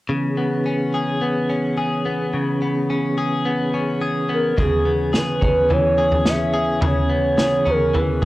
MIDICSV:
0, 0, Header, 1, 5, 480
1, 0, Start_track
1, 0, Key_signature, 4, "minor"
1, 0, Tempo, 560748
1, 80, Time_signature, 4, 2, 24, 8
1, 7062, End_track
2, 0, Start_track
2, 0, Title_t, "Soft synth lead"
2, 0, Program_c, 0, 80
2, 3705, Note_on_c, 0, 70, 76
2, 3940, Note_on_c, 0, 68, 80
2, 3953, Note_off_c, 0, 70, 0
2, 4424, Note_on_c, 0, 71, 84
2, 4437, Note_off_c, 0, 68, 0
2, 4901, Note_on_c, 0, 73, 97
2, 4914, Note_off_c, 0, 71, 0
2, 5381, Note_on_c, 0, 76, 94
2, 5394, Note_off_c, 0, 73, 0
2, 5851, Note_off_c, 0, 76, 0
2, 5877, Note_on_c, 0, 73, 92
2, 6596, Note_on_c, 0, 70, 88
2, 6609, Note_off_c, 0, 73, 0
2, 6837, Note_on_c, 0, 71, 80
2, 6850, Note_off_c, 0, 70, 0
2, 7062, Note_off_c, 0, 71, 0
2, 7062, End_track
3, 0, Start_track
3, 0, Title_t, "Clean electric guitar"
3, 0, Program_c, 1, 27
3, 78, Note_on_c, 1, 49, 64
3, 320, Note_on_c, 1, 59, 44
3, 563, Note_on_c, 1, 61, 45
3, 805, Note_on_c, 1, 68, 52
3, 1035, Note_off_c, 1, 59, 0
3, 1038, Note_on_c, 1, 59, 49
3, 1276, Note_off_c, 1, 61, 0
3, 1280, Note_on_c, 1, 61, 49
3, 1516, Note_off_c, 1, 68, 0
3, 1519, Note_on_c, 1, 68, 49
3, 1754, Note_off_c, 1, 59, 0
3, 1758, Note_on_c, 1, 59, 52
3, 1989, Note_off_c, 1, 49, 0
3, 1999, Note_on_c, 1, 49, 61
3, 2237, Note_off_c, 1, 59, 0
3, 2241, Note_on_c, 1, 59, 47
3, 2478, Note_off_c, 1, 61, 0
3, 2482, Note_on_c, 1, 61, 48
3, 2716, Note_off_c, 1, 68, 0
3, 2719, Note_on_c, 1, 68, 57
3, 2953, Note_off_c, 1, 59, 0
3, 2956, Note_on_c, 1, 59, 52
3, 3197, Note_off_c, 1, 61, 0
3, 3200, Note_on_c, 1, 61, 51
3, 3433, Note_off_c, 1, 68, 0
3, 3437, Note_on_c, 1, 68, 54
3, 3670, Note_off_c, 1, 59, 0
3, 3673, Note_on_c, 1, 59, 49
3, 3906, Note_off_c, 1, 49, 0
3, 3916, Note_on_c, 1, 49, 69
3, 3919, Note_off_c, 1, 68, 0
3, 3923, Note_on_c, 1, 68, 57
3, 4151, Note_off_c, 1, 59, 0
3, 4154, Note_on_c, 1, 59, 47
3, 4180, Note_off_c, 1, 61, 0
3, 4380, Note_off_c, 1, 68, 0
3, 4391, Note_on_c, 1, 68, 55
3, 4632, Note_on_c, 1, 61, 55
3, 4879, Note_on_c, 1, 52, 59
3, 5108, Note_off_c, 1, 68, 0
3, 5119, Note_on_c, 1, 68, 60
3, 5354, Note_off_c, 1, 61, 0
3, 5357, Note_on_c, 1, 61, 51
3, 5584, Note_off_c, 1, 68, 0
3, 5594, Note_on_c, 1, 68, 57
3, 5820, Note_off_c, 1, 49, 0
3, 5826, Note_off_c, 1, 68, 0
3, 5831, Note_on_c, 1, 49, 64
3, 5836, Note_on_c, 1, 68, 52
3, 6061, Note_off_c, 1, 59, 0
3, 6072, Note_on_c, 1, 59, 54
3, 6303, Note_off_c, 1, 68, 0
3, 6313, Note_on_c, 1, 68, 54
3, 6549, Note_off_c, 1, 61, 0
3, 6552, Note_on_c, 1, 61, 52
3, 6796, Note_off_c, 1, 52, 0
3, 6799, Note_on_c, 1, 52, 63
3, 7027, Note_off_c, 1, 68, 0
3, 7062, Note_off_c, 1, 49, 0
3, 7062, Note_off_c, 1, 52, 0
3, 7062, Note_off_c, 1, 59, 0
3, 7062, Note_off_c, 1, 61, 0
3, 7062, End_track
4, 0, Start_track
4, 0, Title_t, "Tonewheel organ"
4, 0, Program_c, 2, 16
4, 78, Note_on_c, 2, 61, 51
4, 80, Note_on_c, 2, 52, 54
4, 82, Note_on_c, 2, 59, 46
4, 83, Note_on_c, 2, 68, 58
4, 3885, Note_off_c, 2, 61, 0
4, 3886, Note_off_c, 2, 52, 0
4, 3887, Note_off_c, 2, 59, 0
4, 3888, Note_off_c, 2, 68, 0
4, 3921, Note_on_c, 2, 52, 54
4, 3921, Note_on_c, 2, 59, 52
4, 3922, Note_on_c, 2, 68, 58
4, 3924, Note_on_c, 2, 61, 54
4, 7062, Note_off_c, 2, 52, 0
4, 7062, Note_off_c, 2, 59, 0
4, 7062, Note_off_c, 2, 61, 0
4, 7062, Note_off_c, 2, 68, 0
4, 7062, End_track
5, 0, Start_track
5, 0, Title_t, "Drums"
5, 3922, Note_on_c, 9, 36, 89
5, 3924, Note_on_c, 9, 43, 88
5, 4007, Note_off_c, 9, 36, 0
5, 4010, Note_off_c, 9, 43, 0
5, 4399, Note_on_c, 9, 38, 86
5, 4485, Note_off_c, 9, 38, 0
5, 4640, Note_on_c, 9, 43, 57
5, 4642, Note_on_c, 9, 36, 76
5, 4726, Note_off_c, 9, 43, 0
5, 4727, Note_off_c, 9, 36, 0
5, 4882, Note_on_c, 9, 43, 57
5, 4967, Note_off_c, 9, 43, 0
5, 5237, Note_on_c, 9, 43, 49
5, 5322, Note_off_c, 9, 43, 0
5, 5354, Note_on_c, 9, 38, 93
5, 5440, Note_off_c, 9, 38, 0
5, 5838, Note_on_c, 9, 43, 93
5, 5923, Note_off_c, 9, 43, 0
5, 6317, Note_on_c, 9, 38, 91
5, 6403, Note_off_c, 9, 38, 0
5, 6562, Note_on_c, 9, 43, 53
5, 6648, Note_off_c, 9, 43, 0
5, 6803, Note_on_c, 9, 43, 55
5, 6888, Note_off_c, 9, 43, 0
5, 7062, End_track
0, 0, End_of_file